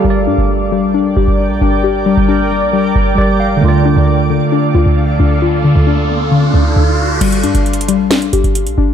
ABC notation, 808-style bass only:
X:1
M:4/4
L:1/16
Q:1/4=134
K:Gm
V:1 name="808-style bass" clef=bass
G,,,2 G,, G,,,4 B,,,3 G,,, G,,,2 B,,, G,,,2- | G,,,3 G,,,4 B,,,3 G,,,2 G,,,4 | D,,3 D,,4 z3 D,, D,,3 D,,2- | D,,3 D,,6- D,, D,,2 D,,4 |
G,,,2 G,, G,,,4 B,,,3 G,,, G,,,2 B,,, G,,,2 |]